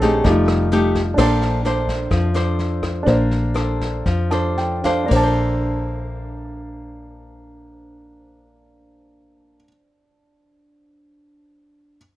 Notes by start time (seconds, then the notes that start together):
Already playing: A#1 A3 C4 D4 G#4 A4 A#4 C5 C#5 D5 D#5
0.02 A3 D#4 G4 G#4, kick, snare
0.24 F1 F3 G3 A3 D#4 G4, kick, snare
0.48 cross-stick, snare
0.72 A3 D#4 G4, snare
0.95 kick, snare
1.14 A#1 A#3 D4 A4 C5, kick
1.18 C5 A5, cross-stick, snare, crash
1.42 snare
1.65 D4 A4 C5, snare
1.88 kick, snare
2.11 F2 F3, kick, cross-stick, snare
2.34 D4 A4 C5, snare
2.59 snare
2.82 kick, cross-stick, snare
3.03 A#1 A#3 D4, kick
3.07 C5 D5, snare
3.31 snare
3.54 D4 A4 C5, cross-stick, snare
3.81 kick, snare
4.06 F2 F3, kick, snare
4.31 D4 A4 C5 A5, cross-stick, snare
4.58 G5, snare
4.84 D4 A4 C5 F5, kick, snare
5.04 A#3 D4
5.11 A#1 D4 C5, kick, crash
5.16 A4 A5
5.23 C5